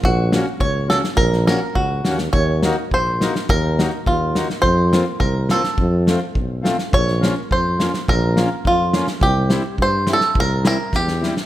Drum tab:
SD |--o---oo|-oo---oo|--o---oo|--o---oo|
BD |o---o---|o---o---|o---o---|o---o---|

SD |--o---oo|--o---oo|-oo---oo|--o---oo|
BD |o---o---|o---o---|o---o---|o---o---|

SD |--o---oo|--o-oooo|
BD |o---o---|o---o---|